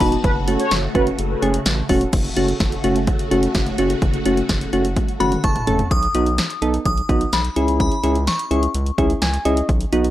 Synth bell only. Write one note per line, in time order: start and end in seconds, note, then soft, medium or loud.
0.01 1.85 A5 medium
5.20 5.45 B5 medium
5.44 5.92 C#6 medium
5.91 6.85 D#6 loud
6.86 7.34 D#6 loud
7.33 7.79 B5 medium
7.80 8.29 B5 medium
8.28 8.94 C#6 medium